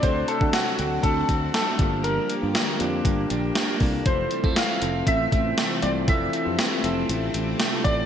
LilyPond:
<<
  \new Staff \with { instrumentName = "Grand piano" } { \time 4/4 \key g \dorian \tempo 4 = 119 c''8 a'8 fis'4 a'4 a'4 | bes'4. r2 r8 | c''4 f''4 e''4. d''8 | e''2 r4. d''8 | }
  \new Staff \with { instrumentName = "Tine electric piano" } { \time 4/4 \key g \dorian << { r1 | r2. <g' c''>8 <a' d''>8~ | <a' d''>8 r2. r8 | r1 | } \\ { <c' d' fis' a'>8 r16 <c' d' fis' a'>8 r16 <c' d' fis' a'>4 r8. <c' d' fis' a'>16 <bes d' f' g'>8~ | <bes d' f' g'>8 r16 <bes d' f' g'>8 r16 <bes d' f' g'>4 r4. | <c' e' f' a'>8 r16 <c' e' f' a'>8 r16 <c' e' a'>4 r8. <c' e' f' c''>8 r16 | <c' e' f' a'>8 r16 <c' e' f' g'>8 r16 <c' e' a'>4 r8. <c' e' f' a'>8 r16 | } >> }
  \new Staff \with { instrumentName = "Clean electric guitar" } { \time 4/4 \key g \dorian fis8 a8 fis8 c'8 a8 c'8 a8 f8 | f8 bes8 f8 d'8 bes8 d'8 bes8 d'8 | e8 g16 a16 e8 c'8 a8 c'8 a8 c'8 | e8 a8 e8 c'8 a8 c'8 a8 c'8 | }
  \new Staff \with { instrumentName = "String machine" } { \time 4/4 \key g \dorian << { <d' fis'>2.~ <d' fis'>8 g'8~ | g'1 | c'1 | d'1 | } \\ { <c fis a>2.~ <c fis a>8 <d g bes>8~ | <d g bes>1 | <c e a>1~ | <c e a>1 | } >> }
  \new Staff \with { instrumentName = "Fretless electric bass" } { \clef bass \time 4/4 \key g \dorian d,8 r16 d16 r8 d,8 d,8 d,8 r8 g,,8~ | g,,8 r16 g,16 r8 f,8 g,,8 bes,,8 r8 c,8 | f,,8 r16 f,16 r8 f,,8 a,,8 a,,8 r8 c,8 | f,,8 r16 f,16 r8 f,,8 a,,8 a,,8 r8 a,,8 | }
  \new DrumStaff \with { instrumentName = "Drums" } \drummode { \time 4/4 <hh bd>8 hh16 bd16 <hh sn>8 hh8 <hh bd>8 <hh bd>8 <hh sn>8 <hh bd>8 | hh8 hh8 <hh sn>8 hh8 <hh bd>8 hh8 <hh sn>8 <hho bd>8 | <hh bd>8 hh16 bd16 <hh sn>8 hh8 <hh bd>8 <hh bd>8 <hh sn>8 hh8 | <hh bd>8 hh8 <hh sn>8 hh8 hh8 hh8 <hh sn>8 <hh bd>8 | }
>>